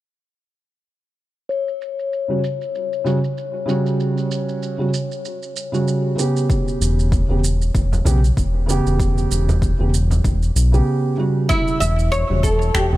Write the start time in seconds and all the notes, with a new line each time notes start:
1.49 C#5, shaker
1.68 shaker
1.82 shaker
1.99 shaker
2.13 shaker
2.28 C#3 G3 F#4
2.44 shaker
2.61 shaker
2.75 shaker
2.93 shaker
3.04 C#3 G3 F#4, shaker
3.24 shaker
3.38 shaker
3.66 C#3 G3 F#4, shaker
3.86 shaker
4.00 shaker
4.18 shaker
4.31 shaker
4.49 shaker
4.63 shaker
4.78 C#3 G3 F#4
4.94 shaker
5.11 shaker
5.25 shaker
5.43 shaker
5.56 shaker
5.72 C#3 G3 F#4, shaker
5.88 shaker
6.16 C#3 B3 G4, shaker
6.37 shaker
6.50 kick, shaker
6.68 shaker
6.81 E1, shaker
6.99 shaker
7.12 kick, shaker
7.29 E1 C#3 B3 G4
7.44 shaker
7.62 shaker
7.75 E1, kick, shaker
7.92 frame drum, shaker
8.05 B1 C#3 B3 G4, frame drum, shaker
8.24 shaker
8.37 E1, kick, shaker
8.66 C#3 B3 G4, shaker
8.86 E1, shaker
9.00 kick, shaker
9.18 shaker
9.31 E1, shaker
9.49 frame drum, shaker
9.62 kick, shaker
9.79 E1 C#3 B3 G4
9.94 shaker
10.11 frame drum, shaker
10.24 E1, kick, shaker
10.43 shaker
10.55 B1, shaker
10.72 C#3 B3 G4, shaker
11.17 C#3 G3 F#4
11.49 E4, kick, shaker
11.68 shaker
11.80 E1 E5, shaker
11.99 shaker
12.12 C#5, shaker
12.29 E1 C#3 G3 F#4
12.43 A4, kick, shaker
12.62 shaker
12.74 E1 G4, finger snap, kick, shaker
12.93 frame drum